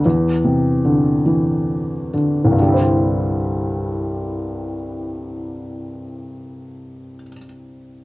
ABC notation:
X:1
M:6/8
L:1/8
Q:3/8=44
K:C
V:1 name="Felt piano" clef=bass
E,, C, D, E,2 D, | [C,,G,,D,G,Ec]6- | [C,,G,,D,G,Ec]6 |]